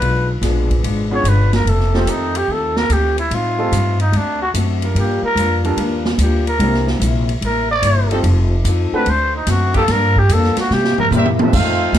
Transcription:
Already playing: B4
0.00 B1 B2 F3 G#3 D4, ride
0.41 A#1 B2 F3 G#3 B3 D4 G#4, snare, hi-hat pedal, ride
0.70 kick, ride
0.82 G#1 B2 F3 G#3 D4, ride
1.11 B3 C#4 D4 F4 G#4 C#5
1.24 G1 B2 F3 G#3 D4, hi-hat pedal, ride
1.28 B4
1.53 A#4, snare, ride
1.65 F1 F2 D#3 A3 C4 A4, ride
1.80 snare
1.93 F3 A3 C4 D#4 F4 G4 A4, snare
2.06 F2 D#3 A3 C4 D#4, hi-hat pedal, ride
2.35 G4, ride
2.48 D#2 F2 D#3 A3 A4
2.53 C4
2.76 A#4, snare
2.89 D2 F2 D#3 A3 C4 G4, hi-hat pedal, ride
3.18 E4, ride
3.31 A2 G3 C4 D#4 F4, ride
3.58 A3 C4 D#4 G4 A4
3.72 G2 A2 G3 C4 D#4, hi-hat pedal, ride
4.00 D#4, ride
4.12 D2 D3 A3 C4, ride
4.17 D4 F#4
4.42 F#4
4.54 F#2 D3 A3 C4 F#4, hi-hat pedal, ride
4.82 G3 D4 F4 A#4, ride
4.95 G2 F3 A#3 D4, ride
4.99 G4
5.22 A#4, muted upright bass stroke
5.35 F2 G2 F3 A#3 D4, hi-hat pedal, ride
5.63 G3 A#3 D4 F4 A4 A#4, ride
5.77 D#2 G2 F3 A#3 D4, ride
6.05 snare
6.18 D2 G2 F3 A#3 D4, hi-hat pedal, ride
6.22 G4
6.47 A#4, ride
6.57 C2 C3 G3 A#3 C4 D4 E4 A#4, ride
6.74 snare
6.88 snare
7.00 A#1 C3 G3 A#3 E4, hi-hat pedal, ride
7.29 ride
7.41 A1 C3 G3 A#3 E4, ride
7.45 A#4
7.71 D5
7.82 G1 C3 G3 A#3 E4, hi-hat pedal, ride
8.10 F3 G3 C4 D#4 F4 A4, ride
8.23 F1 F3 C4 D#4, ride
8.28 A4
8.64 F2 F3 C4 D#4 A4, hi-hat pedal, ride
8.92 A3 C4 D4 F#4 A4 B4, muted upright bass stroke
9.06 D2 D3 A3 C4 F#4 C5, ride
9.36 D#4
9.47 F#2 D3 A3 C4 F#4, snare, hi-hat pedal, ride
9.73 F3 A#3 D4 G4 A4, kick, ride
9.88 G2 F3 A#3 A#4, snare, ride
9.93 D4
10.16 G4, kick
10.29 F2 G2 F3 A4, hi-hat pedal, ride
10.33 A#3 D4
10.44 snare
10.57 F#4, muted upright bass stroke, snare, ride
10.70 C3 G3 A#3 G4, snare
10.75 E4
10.84 snare
10.98 A#4, muted upright bass stroke, floor tom
11.11 A#2 C3 E3 G3 A#3 C4 G4, hi-hat pedal, high tom
11.15 A#3 C4 E4 G4 A#4 E5
11.26 high tom
11.39 G3 A3 C4 D#4 F4 A4 C5, high tom
11.43 F5
11.53 F2 D#3 A3, kick, crash
11.57 C4
11.92 D#2, snare, hi-hat pedal, ride

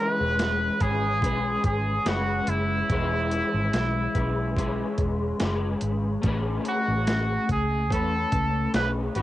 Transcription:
Already playing: E3 G#3 C#4 G#4 B4
0.00 B4
0.20 E1
0.39 snare, closed hi-hat
0.80 G#1 C#4 G#4 B4, kick, closed hi-hat
1.22 B1 G#3 C#4 G#4 B4, kick, closed hi-hat
1.64 G#1 G#4, kick, closed hi-hat
2.05 F#1 G#3 C#4 F#4 G#4 B4, snare, closed hi-hat
2.47 F#1 E4, closed hi-hat
2.89 E1 E3 G#3 C#4 G#4 B4, kick, closed hi-hat
3.32 closed hi-hat
3.54 G#1
3.73 B1, snare, closed hi-hat
4.15 B1 C#4 G#4 B4, kick, closed hi-hat
4.56 G#3 C#4 G#4 B4, kick, closed hi-hat
4.98 E1, kick, closed hi-hat
5.40 F#1 G#3 C#4 G#4 B4, snare, closed hi-hat
5.81 G#1, closed hi-hat
6.22 A1 A3 C#4 G#4, kick, closed hi-hat
6.27 B4
6.65 F#4, closed hi-hat
6.88 A1
7.07 snare, closed hi-hat
7.49 C#2 G#4, kick, closed hi-hat
7.90 E2 A3 C#4 A4 B4, kick, closed hi-hat
8.32 C#2, kick, closed hi-hat
8.73 B1 A3 C#4 G#4 B4, snare, closed hi-hat
9.15 G#1 D#4 F#4 B4, closed hi-hat

